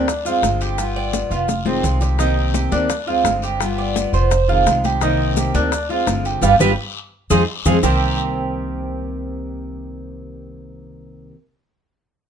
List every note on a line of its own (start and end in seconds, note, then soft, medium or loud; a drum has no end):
0.00 0.39 D2 medium
0.00 0.25 D4 medium
0.07 muted steel-string acoustic guitar stroke medium
0.07 high bongo medium
0.07 high conga soft
0.07 long guiro medium
0.07 maracas medium
0.25 0.42 G#3 medium
0.25 0.43 C4 medium
0.25 0.42 F4 medium
0.25 0.60 F4 medium
0.25 high conga soft
0.25 maracas medium
0.42 1.25 G1 medium
0.42 0.77 D3 soft
0.42 0.77 G#3 medium
0.42 0.78 C4 medium
0.42 0.78 F4 medium
0.42 high bongo medium
0.42 low bongo medium
0.42 high conga medium
0.42 short guiro medium
0.42 maracas medium
0.61 0.95 G4 medium
0.61 high conga soft
0.61 short guiro medium
0.61 maracas soft
0.78 1.30 G3 medium
0.78 1.31 B3 medium
0.78 1.29 F4 medium
0.78 high bongo medium
0.78 high conga soft
0.78 long guiro medium
0.78 maracas medium
0.96 1.30 D5 medium
0.96 high bongo soft
0.96 high conga soft
1.13 high bongo medium
1.13 high conga medium
1.13 short guiro medium
1.13 maracas medium
1.30 1.80 F1 medium
1.30 1.48 B3 medium
1.30 1.48 F4 medium
1.30 1.65 F4 medium
1.30 high bongo soft
1.30 high conga soft
1.30 short guiro medium
1.30 maracas soft
1.48 muted steel-string acoustic guitar stroke medium
1.48 high bongo medium
1.48 high conga loud
1.48 long guiro medium
1.48 maracas medium
1.65 1.82 D#3 medium
1.65 1.83 G#3 medium
1.65 2.01 C4 medium
1.65 1.83 C4 medium
1.65 1.83 F4 medium
1.65 high conga loud
1.83 2.66 C2 medium
1.83 2.18 D#3 soft
1.83 2.19 G#3 soft
1.83 2.19 C4 medium
1.83 2.19 F4 soft
1.83 low bongo medium
1.83 low conga medium
1.83 short guiro medium
1.83 maracas medium
2.01 2.19 G4 medium
2.01 low bongo medium
2.01 low conga medium
2.01 short guiro medium
2.01 maracas soft
2.18 2.71 C3 medium
2.18 2.71 D#3 medium
2.18 2.72 A#3 medium
2.18 2.71 C4 medium
2.18 2.54 D#4 medium
2.18 2.70 G4 medium
2.18 high bongo medium
2.18 high conga soft
2.18 long guiro medium
2.18 maracas medium
2.37 high conga soft
2.54 2.72 G4 medium
2.54 high bongo medium
2.54 high conga medium
2.54 short guiro medium
2.54 maracas medium
2.71 3.21 D2 medium
2.71 2.90 D#3 medium
2.71 2.90 A#3 medium
2.71 2.89 C4 medium
2.71 3.06 D4 medium
2.71 2.89 G4 medium
2.71 high conga medium
2.71 short guiro medium
2.71 maracas soft
2.90 muted steel-string acoustic guitar stroke medium
2.90 high bongo medium
2.90 high conga soft
2.90 long guiro medium
2.90 maracas medium
3.07 3.25 G#3 medium
3.07 3.25 C4 medium
3.07 3.24 F4 medium
3.07 3.42 F4 medium
3.07 high conga soft
3.24 4.07 G1 medium
3.24 3.60 D3 soft
3.24 3.60 G#3 soft
3.24 3.61 C4 medium
3.24 3.61 F4 soft
3.24 high bongo medium
3.24 low bongo medium
3.24 high conga medium
3.24 short guiro medium
3.24 maracas medium
3.42 3.77 G4 medium
3.42 high conga soft
3.42 short guiro medium
3.42 maracas soft
3.60 4.12 G3 medium
3.60 4.13 B3 medium
3.60 4.12 F4 medium
3.60 high bongo medium
3.60 high conga soft
3.60 long guiro medium
3.60 maracas medium
3.78 4.12 D5 medium
3.78 high bongo soft
3.78 high conga soft
3.96 high bongo medium
3.96 high conga medium
3.96 short guiro medium
3.96 maracas medium
4.13 4.62 F1 medium
4.13 4.31 B3 medium
4.13 4.30 F4 medium
4.13 4.48 C5 medium
4.13 high bongo soft
4.13 high conga soft
4.13 short guiro medium
4.13 maracas soft
4.31 muted steel-string acoustic guitar stroke medium
4.31 high bongo medium
4.31 high conga soft
4.31 long guiro medium
4.31 maracas medium
4.48 4.65 D#3 medium
4.48 4.65 G#3 medium
4.48 4.66 C4 medium
4.48 4.65 F4 medium
4.48 4.83 F4 medium
4.48 high conga soft
4.66 5.48 C2 medium
4.66 5.00 D#3 soft
4.66 5.01 G#3 soft
4.66 5.01 C4 soft
4.66 5.02 F4 medium
4.66 high bongo medium
4.66 low bongo medium
4.66 high conga medium
4.66 short guiro medium
4.66 maracas medium
4.84 5.01 G4 medium
4.84 high bongo soft
4.84 high conga medium
4.84 short guiro medium
4.84 maracas soft
5.01 5.53 C3 medium
5.01 5.54 D#3 medium
5.01 5.54 A#3 medium
5.01 5.54 C4 medium
5.01 5.36 D#4 medium
5.01 5.53 G4 medium
5.01 high bongo medium
5.01 high conga soft
5.01 long guiro medium
5.01 maracas medium
5.19 high conga soft
5.36 5.54 G4 medium
5.36 high bongo medium
5.36 high conga medium
5.36 short guiro medium
5.36 maracas medium
5.54 6.03 D2 medium
5.54 5.72 D#3 medium
5.54 5.72 A#3 medium
5.54 5.72 C4 medium
5.54 5.89 D4 medium
5.54 5.71 G4 medium
5.54 high conga medium
5.54 short guiro medium
5.54 maracas soft
5.72 muted steel-string acoustic guitar stroke medium
5.72 high bongo medium
5.72 high conga soft
5.72 long guiro medium
5.72 maracas medium
5.89 6.07 G#3 medium
5.89 6.07 C4 medium
5.89 6.06 F4 medium
5.89 6.24 F4 medium
5.89 high conga soft
6.07 6.40 G1 medium
6.07 6.41 D3 soft
6.07 6.42 G#3 soft
6.07 6.42 C4 soft
6.07 6.43 F4 medium
6.07 high bongo medium
6.07 low bongo medium
6.07 high conga medium
6.07 short guiro medium
6.07 maracas medium
6.25 6.42 G4 medium
6.25 short guiro medium
6.25 maracas soft
6.41 6.55 G1 loud
6.41 6.53 G3 medium
6.41 6.53 B3 loud
6.41 6.53 D4 medium
6.41 6.54 F4 loud
6.41 6.54 G4 medium
6.41 6.54 B4 medium
6.41 low bongo medium
6.41 low conga medium
6.41 long guiro loud
6.41 maracas loud
6.59 6.73 G1 medium
6.59 6.71 G3 medium
6.59 6.71 B3 medium
6.59 6.71 D4 loud
6.59 6.72 F4 medium
6.59 6.72 G4 medium
6.59 6.72 B4 loud
6.59 low bongo medium
6.59 low conga loud
6.59 long guiro loud
6.59 maracas loud
7.30 7.44 F2 medium
7.30 7.42 F3 medium
7.30 7.42 G#3 medium
7.30 7.42 C4 medium
7.30 7.42 D#4 medium
7.30 7.42 F4 medium
7.30 7.42 G#4 medium
7.30 low bongo loud
7.30 low conga loud
7.30 long guiro loud
7.30 maracas loud
7.65 7.79 F2 medium
7.65 7.77 F3 medium
7.65 7.77 G#3 medium
7.65 7.77 C4 medium
7.65 7.77 D#4 medium
7.65 7.77 F4 medium
7.65 7.77 G#4 medium
7.65 low bongo medium
7.65 low conga medium
7.65 long guiro medium
7.65 maracas loud
7.82 11.30 C2 medium
7.82 11.33 C3 medium
7.82 11.34 D#3 medium
7.82 11.35 A#3 medium
7.82 11.30 C4 medium
7.82 11.35 C4 medium
7.82 11.30 G4 medium
7.82 11.36 G4 medium
7.82 11.31 A#4 medium
7.82 low bongo loud
7.82 low conga loud
7.82 long guiro medium
7.82 maracas loud